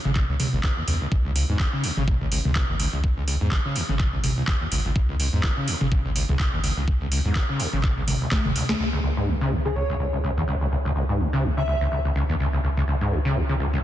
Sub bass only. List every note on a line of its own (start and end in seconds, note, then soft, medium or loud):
0.05 0.28 G#1 medium
0.29 0.38 C#2 medium
0.53 0.62 G#1 medium
0.88 0.99 E2 loud
1.12 1.46 C#2 loud
1.49 1.58 E2 medium
1.97 2.42 G#1 medium
2.45 2.65 C#2 medium
2.69 2.89 G#1 loud
2.93 3.38 C#2 loud
3.41 3.50 E2 loud
3.89 4.34 G#1 medium
4.72 4.83 G#1 loud
4.85 4.94 G#1 medium
4.96 5.30 C#2 medium
5.33 5.42 E2 loud
5.81 6.26 G#1 medium
6.29 6.49 C#2 loud
6.53 6.73 G#1 loud
6.77 7.22 C#2 loud
7.25 7.34 E2 loud
7.73 8.18 G#1 medium
8.45 8.54 G#1 medium
8.80 13.84 C#2 medium